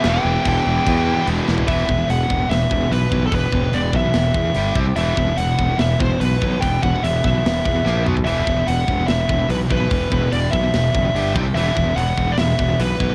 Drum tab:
CC |x---x---x---x---|----------------|----------------|----------------|
HH |----------------|o---o---o---o---|o---o---o---o---|o---o---o---o---|
SD |o-------------o-|--------o-------|--------o-------|--------o-------|
T2 |----------------|----------------|----------------|----------------|
FT |---------------o|----------------|----------------|----------------|
BD |----o---o-------|o-o---o---o---o-|o-o---o---o---o-|--o---o---o---o-|

CC |----------------|----------------|----------------|----------------|
HH |o---o---o-------|o---o---o---o---|o---o---o---o---|o---o---o---o---|
SD |--------o---o---|--------o-------|--------o-------|--------o-------|
T2 |--------------o-|----------------|----------------|----------------|
FT |---------------o|----------------|----------------|----------------|
BD |o-o---o---o-----|--o---o---o---o-|o-o---o---o---o-|--o---o---o---o-|